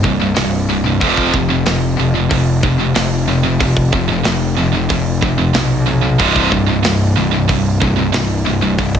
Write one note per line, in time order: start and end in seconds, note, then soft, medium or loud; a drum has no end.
0.00 0.33 C1 medium
0.00 0.18 C2 medium
0.00 0.19 G2 medium
0.04 kick medium
0.20 0.33 C2 medium
0.20 0.34 G2 medium
0.35 0.98 C1 medium
0.35 0.65 C2 medium
0.35 0.65 G2 medium
0.35 snare loud
0.35 open hi-hat medium
0.69 0.83 C2 medium
0.69 0.83 G2 medium
0.84 1.00 C2 medium
0.84 1.00 G2 medium
1.00 1.32 F1 loud
1.00 1.31 F2 loud
1.00 1.32 C3 loud
1.00 1.32 F3 loud
1.00 kick loud
1.00 open hi-hat soft
1.17 kick medium
1.33 1.64 F1 medium
1.33 1.47 F2 medium
1.33 1.48 C3 medium
1.33 kick medium
1.49 1.65 F2 medium
1.49 1.65 C3 medium
1.66 1.97 F1 medium
1.66 1.95 F2 medium
1.66 1.95 C3 medium
1.66 snare loud
1.66 open hi-hat medium
1.97 2.29 F1 medium
1.97 2.13 F2 medium
1.97 2.13 C3 medium
2.14 2.28 F2 medium
2.14 2.29 C3 medium
2.29 2.92 F1 medium
2.29 2.59 F2 medium
2.29 2.60 C3 medium
2.29 kick loud
2.29 open hi-hat medium
2.63 2.77 F2 medium
2.63 2.77 C3 medium
2.63 kick medium
2.78 2.93 F2 medium
2.78 2.94 C3 medium
2.94 3.57 F1 medium
2.94 3.24 F2 medium
2.94 3.25 C3 medium
2.94 snare loud
2.94 open hi-hat medium
3.28 3.43 F2 medium
3.28 3.43 C3 medium
3.44 3.59 F2 medium
3.44 3.60 C3 medium
3.60 3.91 F1 loud
3.60 3.90 F2 medium
3.60 3.90 C3 medium
3.60 kick loud
3.60 open hi-hat medium
3.77 kick medium
3.93 4.23 F1 medium
3.93 4.10 F2 medium
3.93 4.09 C3 medium
3.93 kick medium
4.11 4.24 F2 medium
4.11 4.24 C3 medium
4.25 4.56 F1 medium
4.25 4.54 F2 medium
4.25 4.55 C3 medium
4.25 snare loud
4.25 open hi-hat medium
4.57 4.88 F1 loud
4.57 4.74 F2 medium
4.57 4.73 C3 medium
4.75 4.89 F2 medium
4.75 4.90 C3 medium
4.90 5.51 F1 medium
4.90 5.20 F2 medium
4.90 5.20 C3 medium
4.90 kick loud
4.90 open hi-hat medium
5.22 5.37 F2 medium
5.22 5.37 C3 medium
5.22 kick medium
5.38 5.53 F2 medium
5.38 5.54 C3 medium
5.54 6.16 B1 medium
5.54 5.84 F2 medium
5.54 5.84 C3 medium
5.54 snare loud
5.54 open hi-hat medium
5.86 6.02 F2 medium
5.86 6.02 C3 medium
6.03 6.19 F2 medium
6.03 6.19 C3 medium
6.19 6.50 C1 loud
6.19 6.50 C2 medium
6.19 6.50 G2 medium
6.19 6.50 C3 medium
6.19 kick loud
6.19 open hi-hat soft
6.36 kick medium
6.52 6.83 C1 medium
6.52 6.69 C2 medium
6.52 6.68 G2 medium
6.52 kick medium
6.69 6.84 C2 medium
6.69 6.85 G2 medium
6.84 7.15 C1 medium
6.84 7.14 C2 medium
6.84 7.14 G2 medium
6.84 snare loud
6.84 open hi-hat medium
7.17 7.47 C1 medium
7.17 7.33 C2 medium
7.17 7.33 G2 medium
7.34 7.48 C2 medium
7.34 7.48 G2 medium
7.49 8.10 C1 medium
7.49 7.78 C2 medium
7.49 7.79 G2 medium
7.49 kick loud
7.49 open hi-hat medium
7.82 7.97 C2 medium
7.82 7.97 G2 medium
7.82 kick medium
7.98 8.13 C2 medium
7.98 8.14 G2 medium
8.14 8.76 C1 medium
8.14 8.43 C2 medium
8.14 8.44 G2 medium
8.14 snare loud
8.14 open hi-hat medium
8.45 8.61 C2 medium
8.45 8.60 G2 medium
8.61 8.77 C2 medium
8.61 8.77 G2 medium
8.78 9.00 C1 medium
8.78 9.00 C2 medium
8.78 9.00 G2 medium
8.78 kick loud
8.78 open hi-hat medium
8.95 kick medium